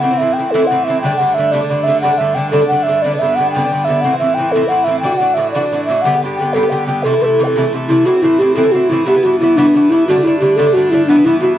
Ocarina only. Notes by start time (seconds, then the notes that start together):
0.01 F#5
0.18 E5
0.33 G5
0.51 A4
0.67 F#5
0.84 E5
1.01 G5
1.17 F#5
1.34 E5
1.52 D5
1.83 E5
2.01 F#5
2.18 E5
2.35 G5
2.51 A4
2.68 F#5
2.83 E5
3.02 D5
3.16 D5 E5
3.35 F#5
3.51 G5
3.85 E5
4.01 F#5
4.19 E5
4.34 G5
4.52 A4
4.68 F#5
4.84 E5
5.00 G5
5.17 F#5
5.34 E5
5.51 D5
5.85 E5
6.02 F#5
6.36 G5
6.53 A4
6.70 G5
6.87 G5
7.03 A4
7.22 A4 B4
7.44 A4 G5
7.88 E4
8.06 F#4
8.22 E4
8.39 G4
8.56 A4
8.72 F#4
8.89 E4
9.07 G4
9.23 F#4
9.40 E4
9.56 D4
9.90 E4
10.07 F#4
10.23 E4
10.39 G4
10.56 A4
10.73 F#4
10.90 E4
11.06 D4
11.25 E4
11.40 F#4